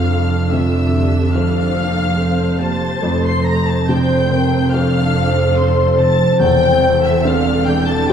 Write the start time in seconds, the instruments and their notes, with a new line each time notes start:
Already playing: double bass section F1, harp F2 C4, felt piano F2, cello section F2, viola section A4, violin section F5 F6
0.07 harp C3, viola section D4, french horn section A4
0.51 harp D3, felt piano C4, viola section F4, violin section E5 E6
0.92 harp C3, viola section G4
1.34 harp F2, viola section A4, felt piano A4 C5, french horn section C5, violin section F5 F6
1.76 french horn section A#3, harp C4
2.17 viola section C4 C5, harp D4, french horn section A4
2.60 harp C3, viola section A#3, french horn section G4, violin section A5 A6
3.02 double bass section F1, harp F2, felt piano F2, cello section F2, viola section A3, french horn section A4
3.24 violin section C6 C7
3.44 harp C4, violin section A#5 A#6
3.67 violin section A5 A6
3.87 felt piano C3, viola section C4 C5, harp D4, french horn section C5, violin section G5 G6
4.30 harp C3, french horn section A#4
4.72 harp F2, viola section D4 A4, french horn section A4, felt piano A4 C5, violin section F5 F6
5.14 harp C4, french horn section C5
5.56 viola section C4, harp D4, violin section C5 C6
5.98 harp C3, violin section A5 A6
6.40 double bass section E1, felt piano E2, cello section E2, viola section C4 A4, violin section G5 G6
6.80 harp E3
7.04 violin section E5 E6
7.24 harp G3, felt piano C4, viola section D4, french horn section A4, violin section F5 F6
7.65 harp E3, violin section G5 G6
7.86 violin section A5
7.90 violin section A6
8.07 harp E2, viola section C4 G4, french horn section G4, felt piano G4, violin section G5 G6